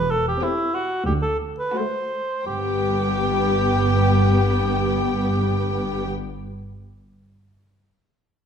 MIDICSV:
0, 0, Header, 1, 7, 480
1, 0, Start_track
1, 0, Key_signature, 1, "major"
1, 0, Tempo, 654308
1, 1275, Tempo, 713436
1, 1763, Time_signature, 4, 2, 24, 8
1, 5797, End_track
2, 0, Start_track
2, 0, Title_t, "Violin section"
2, 0, Program_c, 0, 48
2, 303, Note_on_c, 0, 79, 47
2, 654, Note_off_c, 0, 79, 0
2, 1269, Note_on_c, 0, 81, 32
2, 1636, Note_off_c, 0, 81, 0
2, 1754, Note_on_c, 0, 79, 35
2, 4188, Note_off_c, 0, 79, 0
2, 5797, End_track
3, 0, Start_track
3, 0, Title_t, "Cor anglais"
3, 0, Program_c, 1, 69
3, 0, Note_on_c, 1, 71, 66
3, 81, Note_on_c, 1, 69, 57
3, 92, Note_off_c, 1, 71, 0
3, 191, Note_off_c, 1, 69, 0
3, 205, Note_on_c, 1, 67, 50
3, 313, Note_on_c, 1, 64, 55
3, 324, Note_off_c, 1, 67, 0
3, 544, Note_on_c, 1, 66, 59
3, 555, Note_off_c, 1, 64, 0
3, 772, Note_off_c, 1, 66, 0
3, 776, Note_on_c, 1, 67, 50
3, 831, Note_off_c, 1, 67, 0
3, 897, Note_on_c, 1, 69, 46
3, 1009, Note_off_c, 1, 69, 0
3, 1165, Note_on_c, 1, 71, 45
3, 1295, Note_on_c, 1, 72, 45
3, 1305, Note_off_c, 1, 71, 0
3, 1762, Note_off_c, 1, 72, 0
3, 1766, Note_on_c, 1, 67, 44
3, 4194, Note_off_c, 1, 67, 0
3, 5797, End_track
4, 0, Start_track
4, 0, Title_t, "Violin section"
4, 0, Program_c, 2, 48
4, 309, Note_on_c, 2, 67, 40
4, 658, Note_off_c, 2, 67, 0
4, 1277, Note_on_c, 2, 66, 35
4, 1640, Note_off_c, 2, 66, 0
4, 1757, Note_on_c, 2, 67, 31
4, 4189, Note_off_c, 2, 67, 0
4, 5797, End_track
5, 0, Start_track
5, 0, Title_t, "Viola section"
5, 0, Program_c, 3, 48
5, 309, Note_on_c, 3, 60, 39
5, 658, Note_off_c, 3, 60, 0
5, 1283, Note_on_c, 3, 57, 33
5, 1643, Note_off_c, 3, 57, 0
5, 1766, Note_on_c, 3, 59, 31
5, 4194, Note_off_c, 3, 59, 0
5, 5797, End_track
6, 0, Start_track
6, 0, Title_t, "Cello section"
6, 0, Program_c, 4, 48
6, 0, Note_on_c, 4, 40, 55
6, 206, Note_off_c, 4, 40, 0
6, 780, Note_on_c, 4, 38, 46
6, 1170, Note_off_c, 4, 38, 0
6, 1769, Note_on_c, 4, 43, 36
6, 4195, Note_off_c, 4, 43, 0
6, 5797, End_track
7, 0, Start_track
7, 0, Title_t, "Double bass section"
7, 0, Program_c, 5, 48
7, 0, Note_on_c, 5, 28, 53
7, 210, Note_off_c, 5, 28, 0
7, 784, Note_on_c, 5, 38, 46
7, 1173, Note_off_c, 5, 38, 0
7, 1766, Note_on_c, 5, 31, 38
7, 4194, Note_off_c, 5, 31, 0
7, 5797, End_track
0, 0, End_of_file